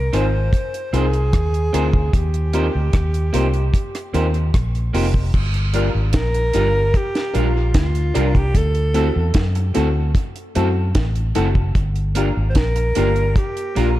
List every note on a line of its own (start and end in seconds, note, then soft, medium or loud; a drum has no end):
0.00 0.17 A#4 medium
0.13 0.49 G#1 medium
0.13 0.25 C4 medium
0.13 0.26 C4 medium
0.13 0.26 D#4 medium
0.13 0.25 F4 medium
0.13 0.26 F4 medium
0.13 0.25 G#4 medium
0.13 0.26 A#4 medium
0.13 0.25 C5 medium
0.13 0.96 C5 loud
0.13 closed hi-hat medium
0.53 kick loud
0.53 closed hi-hat medium
0.74 closed hi-hat soft
0.93 1.34 C2 medium
0.93 1.05 C4 medium
0.93 1.06 C4 medium
0.93 1.06 D#4 medium
0.93 1.06 F4 medium
0.93 1.05 F4 medium
0.93 1.05 G#4 medium
0.93 2.17 G#4 medium
0.93 1.07 A#4 medium
0.93 1.05 C5 loud
0.93 closed hi-hat medium
1.13 closed hi-hat soft
1.33 1.69 D#2 medium
1.33 kick loud
1.33 cross-stick loud
1.33 closed hi-hat medium
1.54 closed hi-hat soft
1.73 2.09 D2 medium
1.73 1.85 C4 medium
1.73 1.86 C4 medium
1.73 1.87 D#4 medium
1.73 1.85 F4 medium
1.73 1.87 F4 medium
1.73 1.85 G#4 medium
1.73 1.87 A#4 loud
1.73 1.86 C5 medium
1.73 closed hi-hat medium
1.93 kick medium
2.13 2.68 D#2 loud
2.13 4.55 G4 medium
2.13 kick loud
2.13 closed hi-hat medium
2.34 closed hi-hat soft
2.53 2.65 A#3 medium
2.53 2.67 C4 medium
2.53 2.65 D#4 medium
2.53 2.67 F4 medium
2.53 2.67 G4 medium
2.53 2.66 G4 loud
2.53 2.67 A#4 loud
2.53 2.66 C5 medium
2.53 closed hi-hat medium
2.75 2.92 D2 medium
2.93 3.30 D#2 medium
2.93 kick loud
2.93 cross-stick loud
2.93 closed hi-hat medium
3.14 closed hi-hat soft
3.33 3.70 C2 medium
3.33 3.45 A#3 medium
3.33 3.47 C4 medium
3.33 3.45 D#4 medium
3.33 3.47 F4 medium
3.33 3.47 G4 medium
3.33 3.46 G4 medium
3.33 3.47 A#4 medium
3.33 3.46 C5 medium
3.33 closed hi-hat medium
3.54 closed hi-hat soft
3.74 kick medium
3.74 closed hi-hat medium
3.95 cross-stick medium
3.95 closed hi-hat medium
4.13 4.50 D#2 loud
4.13 4.25 A#3 medium
4.13 4.27 C4 medium
4.13 4.26 D#4 medium
4.13 4.27 F4 medium
4.13 4.27 G4 medium
4.13 4.26 G4 medium
4.13 4.27 A#4 medium
4.13 4.26 C5 medium
4.13 closed hi-hat medium
4.34 closed hi-hat soft
4.54 4.90 A#1 medium
4.54 kick loud
4.54 cross-stick loud
4.54 closed hi-hat medium
4.75 closed hi-hat soft
4.93 5.30 F1 medium
4.93 5.06 A#3 medium
4.93 5.07 C4 medium
4.93 5.06 D#4 medium
4.93 5.07 F4 medium
4.93 5.06 G4 medium
4.93 5.07 G4 medium
4.93 5.08 A#4 medium
4.93 5.06 C5 medium
4.93 open hi-hat medium
5.14 kick medium
5.34 5.89 G1 loud
5.34 kick loud
5.34 crash medium
5.54 closed hi-hat soft
5.74 5.86 G3 medium
5.74 5.86 D4 medium
5.74 5.88 D4 medium
5.74 5.86 F4 medium
5.74 5.88 F4 medium
5.74 5.88 G4 medium
5.74 5.87 A#4 medium
5.74 5.88 A#4 loud
5.74 closed hi-hat medium
5.95 6.15 G#1 medium
6.13 6.50 A#1 medium
6.13 6.98 A#4 loud
6.13 kick loud
6.13 snare loud
6.13 closed hi-hat medium
6.34 muted clean electric guitar stroke soft
6.34 closed hi-hat soft
6.53 6.91 G1 medium
6.53 6.66 G3 medium
6.53 6.68 D4 medium
6.53 6.67 D4 medium
6.53 6.68 F4 medium
6.53 6.67 F4 medium
6.53 6.68 G4 medium
6.53 6.68 A#4 loud
6.53 6.67 A#4 medium
6.53 closed hi-hat medium
6.94 7.39 G4 loud
6.94 kick loud
6.94 closed hi-hat medium
7.15 snare medium
7.15 closed hi-hat medium
7.33 7.71 A#1 loud
7.33 7.46 G3 medium
7.33 7.47 D4 medium
7.33 7.46 D4 medium
7.33 7.47 F4 medium
7.33 7.47 G4 medium
7.33 7.47 A#4 medium
7.33 closed hi-hat medium
7.38 7.76 F4 medium
7.74 8.11 D2 medium
7.74 8.39 F4 medium
7.74 kick loud
7.74 snare loud
7.74 closed hi-hat medium
7.95 closed hi-hat soft
8.14 8.51 C2 medium
8.14 8.27 G3 medium
8.14 8.28 D4 medium
8.14 8.27 D4 medium
8.14 8.28 F4 medium
8.14 8.27 F4 medium
8.14 8.28 G4 medium
8.14 8.28 A#4 loud
8.14 8.27 A#4 medium
8.14 closed hi-hat medium
8.35 8.59 G4 loud
8.35 muted clean electric guitar stroke soft
8.35 kick loud
8.35 closed hi-hat soft
8.55 9.09 D2 loud
8.55 9.36 A4 medium
8.55 kick loud
8.55 closed hi-hat medium
8.75 closed hi-hat soft
8.94 9.06 A3 medium
8.94 9.08 C4 medium
8.94 9.07 C4 medium
8.94 9.08 E4 medium
8.94 9.08 F#4 medium
8.94 9.07 F#4 medium
8.94 9.08 A4 loud
8.94 9.07 A4 medium
8.94 closed hi-hat medium
9.16 9.33 E2 loud
9.34 9.71 F#2 medium
9.34 kick loud
9.34 snare loud
9.34 closed hi-hat medium
9.55 muted clean electric guitar stroke soft
9.55 closed hi-hat medium
9.74 10.12 D2 medium
9.74 9.87 A3 medium
9.74 9.88 C4 loud
9.74 9.87 C4 medium
9.74 9.88 E4 medium
9.74 9.88 F#4 medium
9.74 9.87 F#4 medium
9.74 9.88 A4 loud
9.74 9.87 A4 medium
9.74 closed hi-hat medium
10.15 kick loud
10.15 closed hi-hat medium
10.36 closed hi-hat soft
10.55 10.92 F#2 loud
10.55 10.67 A3 medium
10.55 10.69 C4 medium
10.55 10.67 C4 medium
10.55 10.69 E4 medium
10.55 10.69 F#4 medium
10.55 10.68 F#4 medium
10.55 10.69 A4 loud
10.55 10.68 A4 loud
10.55 closed hi-hat medium
10.95 11.31 A1 medium
10.95 kick loud
10.95 snare loud
10.95 closed hi-hat medium
11.16 closed hi-hat soft
11.35 11.72 F#1 medium
11.35 11.47 A3 medium
11.35 11.49 C4 medium
11.35 11.47 C4 medium
11.35 11.49 E4 medium
11.35 11.49 F#4 medium
11.35 11.48 F#4 loud
11.35 11.49 A4 loud
11.35 11.48 A4 medium
11.35 closed hi-hat medium
11.55 muted clean electric guitar stroke soft
11.55 kick loud
11.75 12.30 G1 medium
11.75 kick loud
11.75 closed hi-hat medium
11.96 closed hi-hat soft
12.15 12.27 A#3 medium
12.15 12.29 A#3 medium
12.15 12.28 D4 medium
12.15 12.30 D4 medium
12.15 12.28 F4 medium
12.15 12.30 F4 medium
12.15 12.30 G4 loud
12.15 12.28 A#4 medium
12.15 closed hi-hat medium
12.37 12.56 G#1 medium
12.50 12.58 C5 medium
12.55 12.92 A#1 medium
12.55 13.40 A#4 loud
12.55 kick loud
12.55 snare loud
12.55 closed hi-hat medium
12.76 muted clean electric guitar stroke soft
12.76 closed hi-hat medium
12.95 13.32 G1 medium
12.95 13.08 A#3 medium
12.95 13.09 A#3 medium
12.95 13.08 D4 medium
12.95 13.09 D4 medium
12.95 13.08 F4 medium
12.95 13.09 F4 medium
12.95 13.09 G4 loud
12.95 13.08 A#4 medium
12.95 closed hi-hat medium
13.16 closed hi-hat soft
13.36 13.81 G4 loud
13.36 kick loud
13.36 closed hi-hat medium
13.57 closed hi-hat soft
13.75 13.99 A#1 loud
13.75 13.88 A#3 medium
13.75 13.90 A#3 loud
13.75 13.88 D4 medium
13.75 13.90 D4 medium
13.75 13.88 F4 medium
13.75 13.90 F4 medium
13.75 13.99 F4 medium
13.75 13.90 G4 medium
13.75 13.88 A#4 loud
13.75 closed hi-hat medium